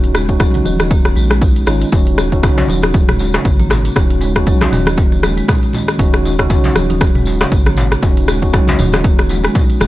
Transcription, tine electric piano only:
Already playing: C#4 D#4 F#4
0.29 C#4 D#4 F#4
1.67 C#4 D#4 F4
1.92 C#4 D#4 F#4
2.32 C#4 D#4 F#4
3.96 C#4 D#4 F#4
4.36 C#4 D#4 F#4
5.99 C#4 D#4 F#4
6.39 C#4 D#4 F#4
8.03 C#4 D#4 F#4
8.42 C#4 D#4 F#4

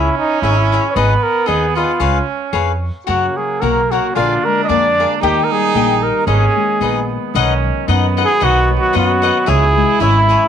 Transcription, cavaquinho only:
0.43 E4 G#4 C#5 E5
0.72 E4 G#4 C#5 E5
0.96 D#4 G#4 B4 D#5
1.46 D#4 G#4 B4 D#5
1.75 D#4 G#4 B4 D#5
2.00 G#4 B4 C#5 F5
2.53 G#4 B4 C#5 F5
3.07 F#4 A#4 C#5 F#5
3.62 F#4 A#4 C#5 F#5
3.91 F#4 A#4 C#5 F#5
4.15 G#4 A#4 D5 F5
4.69 G#4 A#4 D5 F5
5.00 G#4 A#4 D5 F5
5.23 G4 A#4 D#5 G5
5.75 G4 A#4 D#5 G5
6.27 D#4 G#4 B4 D#5
6.81 D#4 G#4 B4 D#5
7.35 D#4 B4 D#5 F#5
7.88 D#4 B4 D#5 F#5
8.17 D#4 B4 D#5 F#5
8.40 D#4 B4 D#5 F#5
8.93 D#4 B4 D#5 F#5
9.22 D#4 B4 D#5 F#5
9.46 E4 G#4 C#5 E5
10.00 E4 G#4 C#5 E5
10.29 E4 G#4 C#5 E5

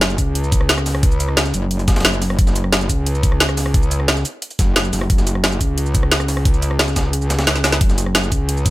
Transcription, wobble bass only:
Already playing: F#1
0.18 C#2
1.54 F#1
2.05 F#1
2.39 F#1
2.89 C#2
4.59 F#1
4.93 F#1
5.10 F#1
5.61 C#2
6.96 C#2
7.81 F#1
8.32 C#2

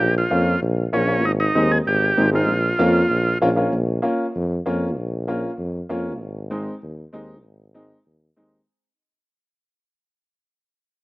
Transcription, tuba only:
0.00 A#1
0.31 F2
0.62 A#1
0.93 A#1
1.24 G#1
1.55 D#2
1.86 G#1
2.17 G#1
2.48 A#1
2.79 F2
3.09 A#1
3.41 A#1
3.72 A#1
4.35 F2
4.67 F2
4.97 A#1
5.58 F2
5.90 F2
6.19 G#1
6.83 D#2
7.13 D#2
7.44 G#1
8.06 D#2
8.37 D#2

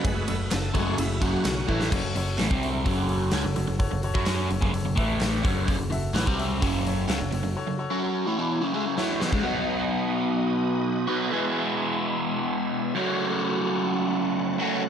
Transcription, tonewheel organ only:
Already playing: B4
0.04 G#3 A3 F#4
0.52 A4
0.74 G#3 A3 F#4
0.99 E4
1.22 F#4
9.09 B3 C4
9.16 D4 E4
9.21 F4 G4
9.26 A4 B4
9.33 C5 D5
9.38 E5 F5
9.43 B3 D#4 F#4 D#5
11.32 B3 E4 G#4 E5
12.96 C#4 F#4 A4 F#5

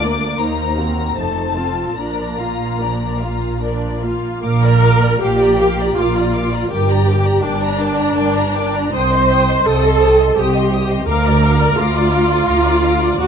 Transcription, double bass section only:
Already playing: D2
0.40 D#2
1.18 F1
1.99 A#1
4.43 A#1
5.21 A#1
5.98 A#1
6.72 G1
7.43 G1
8.16 G1
8.94 C2
9.65 C2
10.36 C2
11.06 D2
11.76 D2
12.48 D2
13.19 D#2

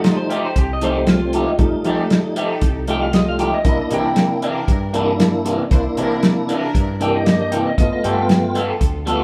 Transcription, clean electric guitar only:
0.30 F3 A3 D#4 G4
0.82 F3 A3 D#4 G4
1.34 F3 A3 D#4 G4
1.85 F3 A3 D#4 G4
2.36 F3 A3 D#4 G4
2.88 F3 A3 D#4 G4
3.39 F3 A3 D#4 G4
3.90 C3 E3 A#3 D4
4.43 C3 E3 A#3 D4
4.93 C3 E3 A#3 D4
5.45 C3 E3 A#3 D4
5.97 C3 E3 A#3 D4
6.49 C3 E3 A#3 D4
7.00 C3 E3 A#3 D4
7.52 C3 E3 A#3 D4
8.04 G3 B3 F4 A4
8.55 G3 B3 F4 A4
9.06 G3 B3 F4 A4

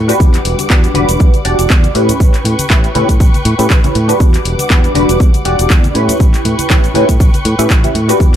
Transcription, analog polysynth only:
0.08 D4 F#4 G4 B4
0.70 D4 F#4 G4 B4
0.94 D4 F#4 G4 B4
1.45 D4 F#4 G4 D5
1.94 C#4 E4 G4 B4
2.70 C#4 E4 G4 B4
2.95 C#4 E4 G4 B4
3.59 C#4 E4 G4 B4
3.84 C#4 E4 G4 B4
4.08 D4 F#4 G4 B4
4.70 D4 F#4 G4 B4
4.95 D4 F#4 G4 B4
5.45 D4 F#4 G4 D5
5.94 C#4 E4 G4 B4
6.70 C#4 E4 G4 B4
6.95 C#4 E4 G4 B4
7.58 C#4 E4 G4 B4
7.84 C#4 E4 G4 B4
8.08 D4 F#4 G4 B4

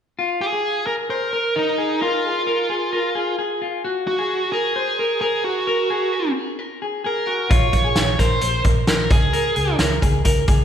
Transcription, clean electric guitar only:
0.19 F4
0.53 G#4
0.87 A#4
1.10 C5
1.33 A#4
1.56 A#4
1.78 G#4
2.01 A#4
2.25 G#4
2.47 A#4
2.70 G#4
2.93 A#4
3.15 G#4
3.39 G#4
3.62 F4
3.85 F#4
4.19 G#4
4.53 A#4
4.76 C5
4.99 A#4
5.22 A#4
5.45 G#4
5.67 A#4
5.90 G#4
6.13 A#4
6.36 G#4
6.59 A#4
6.82 G#4
7.04 G#4
7.27 F#4
7.50 F4
7.84 G#4
8.18 A#4
8.42 C5
8.64 A#4
8.87 A#4
9.10 G#4
9.33 A#4
9.56 G#4
9.79 A#4
10.02 G#4
10.25 A#4
10.48 G#4

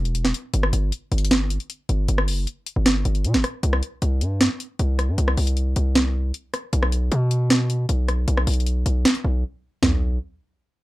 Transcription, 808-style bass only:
Already playing: E1
0.54 G1
0.73 G1
1.12 G1
1.89 G1
2.08 G1
2.28 F#1
2.76 G1
3.05 G1
3.25 B2
3.34 G1
3.63 C2
4.02 C2
4.21 G2
4.79 C2
5.08 G2
5.18 C2
5.37 C2
5.76 C2
6.73 B1
7.12 B2
7.89 B1
8.28 B1
8.47 B1
8.86 B1
9.24 B1
9.83 B1

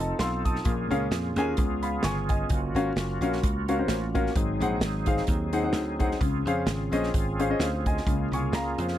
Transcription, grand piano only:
0.00 D#5 A5
0.20 F5 C6
0.45 A5 D#6
0.65 A#2
0.91 C#4 G#4 A#4 F5
1.37 C#4 G#4 A#4 G#5
1.58 C#3
1.83 F5 B5
2.04 G#5 C#6
2.29 D#5 G#5
2.76 C#4 F#4 A#4 F5
3.22 C#4 F#4 A#4 F5
3.69 C#4 F#4 A#4 F5
3.79 C#4 F#4 A#4 C5
4.15 C#4 F#4 A#4 F5
4.36 G#2
4.62 D#4 G#4 C5 F#5
5.07 D#4 G#4 C5 F5
5.53 D#4 G#4 C5 F#5
5.63 D#4 G#4 C5 F#5
5.99 D#4 G#4 C5 F#5
6.20 C#3
6.47 C#4 G#4 C5 F5
6.93 C#4 G#4 C5 D#5
7.39 C#4 G#4 C5 F5
7.50 C#4 G#4 C5 D#5
7.60 C5 F5
7.87 D#5 G#5
8.08 C#3
8.34 G#5 C#6
8.55 F5 A#5
8.80 C5 F5

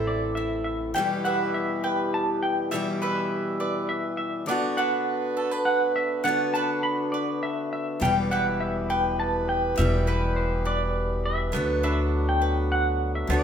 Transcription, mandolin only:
Already playing: A3 E4 C5 E5
0.37 E4
0.96 G3
1.25 E4 B4 E5
1.84 B4
2.72 G3
3.02 E4 B4 E5
3.60 B4
4.49 B3
4.78 D4 B4 F#5
5.37 A4
5.51 B4
6.25 B3
6.55 D4 B4 F#5
7.14 B4
8.02 G3
8.31 E4 B4 G5
8.90 B4
9.78 G3
10.07 E4 B4 G5
10.65 B4
11.53 B3
11.83 D4 B4
12.42 B4
13.30 B3

